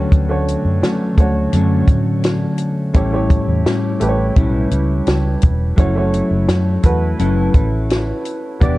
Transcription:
Already playing: clean electric guitar D3 F#3 A3 C#4, upright piano A3 D4 F#4 C#5
0.12 fingered electric bass D2, kick, closed hi-hat
0.29 upright piano A3 D4 F#4 C#5
0.48 closed hi-hat
0.65 fingered electric bass F#2
0.82 clean electric guitar D3 F#3 A3 C#4, fingered electric bass D3, snare, closed hi-hat
1.17 fingered electric bass D2, upright piano A3 D4 F#4 C#5, kick, closed hi-hat
1.52 fingered electric bass F#2, clean electric guitar D3 F#3 A3 C#4, closed hi-hat
1.88 fingered electric bass A2, kick, closed hi-hat
2.24 snare, closed hi-hat
2.58 closed hi-hat
2.93 fingered electric bass A1, clean electric guitar A2 G3 C#4 E4, upright piano A3 E4 G4 C#5, kick, closed hi-hat
3.12 upright piano A3 E4 G4 C#5
3.30 kick, closed hi-hat
3.48 fingered electric bass E2
3.65 clean electric guitar A2 G3 C#4 E4, fingered electric bass A2, snare, closed hi-hat
4.00 fingered electric bass A1, upright piano A3 E4 G4 B4, closed hi-hat
4.09 upright piano C#5
4.36 fingered electric bass B1, clean electric guitar A2 G3 C#4 E4, kick, closed hi-hat
4.71 fingered electric bass C#2, clean electric guitar G3 C#4 E4, closed hi-hat
5.07 fingered electric bass C#2, snare, closed hi-hat
5.42 fingered electric bass E1, kick, closed hi-hat
5.76 fingered electric bass F#1, clean electric guitar F#3 C#4 E4 A4, upright piano A3 E4 F#4 C#5, kick, closed hi-hat
5.95 upright piano A3 E4 F#4 C#5
6.13 closed hi-hat
6.31 fingered electric bass F#1
6.48 fingered electric bass F#2, snare, closed hi-hat
6.83 fingered electric bass E2, upright piano A3 E4 F#4 B4, kick, closed hi-hat
7.19 fingered electric bass F#1, clean electric guitar F#3 C#4 E4 A4, closed hi-hat
7.54 fingered electric bass A1, clean electric guitar C#4 E4 A4, kick, closed hi-hat
7.90 snare, closed hi-hat
8.25 closed hi-hat
8.61 fingered electric bass E1, clean electric guitar E3 B3 D4 G4, upright piano B3 E4 G4 D5, kick, closed hi-hat

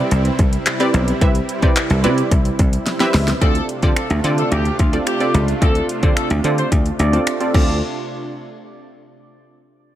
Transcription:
Already playing: supersaw synth C3 G3 C4 E4, synth pluck C4 E4 G4 B4 D5
0.11 slap bass C2, closed hi-hat
0.25 closed hi-hat
0.39 slap bass C2, kick, closed hi-hat
0.53 closed hi-hat
0.66 clap, closed hi-hat
0.80 synth pluck C4 E4 G4 B4 D5, closed hi-hat
0.94 slap bass B1, closed hi-hat
1.08 closed hi-hat
1.21 slap bass C2, synth pluck C4 E4 G4 B4 E5, kick, closed hi-hat
1.35 closed hi-hat
1.49 closed hi-hat
1.62 slap bass C3, synth pluck C4 E4 G4 B4 D5, kick, closed hi-hat
1.76 clap, closed hi-hat
1.90 slap bass C2, closed hi-hat
2.04 slap bass C3, synth pluck C4 E4 G4 B4 D5, closed hi-hat
2.18 closed hi-hat
2.31 slap bass C2, kick, closed hi-hat
2.45 closed hi-hat
2.59 slap bass C2, kick, closed hi-hat
2.73 closed hi-hat
2.86 snare, closed hi-hat
3.00 synth pluck C4 E4 G4 B4 E5, snare, closed hi-hat
3.14 slap bass C#2, snare, open hi-hat
3.28 snare, closed hi-hat
3.41 slap bass D2, supersaw synth C3 A3 D4 F4, synth pluck C4 F4 A4 D5, horn section A4, kick, closed hi-hat
3.55 closed hi-hat
3.69 closed hi-hat
3.83 slap bass D3, synth pluck C4 F4 A4 D5, horn section G4, kick, closed hi-hat
3.96 horn section A4, finger snap, closed hi-hat
4.10 slap bass D2, closed hi-hat
4.24 slap bass D3, synth pluck C4 F4 A4 D5, closed hi-hat
4.38 horn section A4, closed hi-hat
4.52 slap bass D2, horn section G4, closed hi-hat
4.65 closed hi-hat
4.79 slap bass D2, horn section F4, kick, closed hi-hat
4.93 synth pluck C4 F4 A4 D5, closed hi-hat
5.07 horn section G4, finger snap, closed hi-hat
5.20 synth pluck C4 F4 A4 D5, closed hi-hat
5.34 slap bass C#2, closed hi-hat
5.48 closed hi-hat
5.61 slap bass D2, synth pluck C4 F4 A4 D5, horn section A4, kick, closed hi-hat
5.75 closed hi-hat
5.89 closed hi-hat
6.03 slap bass D3, synth pluck C4 F4 A4 D5, horn section C5, kick, closed hi-hat
6.17 horn section A4, finger snap, closed hi-hat
6.30 slap bass D2, closed hi-hat
6.44 slap bass D3, synth pluck C4 F4 A4 D5, closed hi-hat
6.58 horn section C5, closed hi-hat
6.72 slap bass D2, kick, closed hi-hat
6.86 closed hi-hat
6.99 slap bass D2, horn section D5, closed hi-hat
7.13 synth pluck C4 F4 A4 D5, closed hi-hat
7.27 finger snap, closed hi-hat
7.40 synth pluck C4 F4 A4 D5, closed hi-hat
7.54 slap bass D2, supersaw synth C3 A3 D4 F4, synth pluck C4 F4 A4 D5, horn section D5, kick, crash

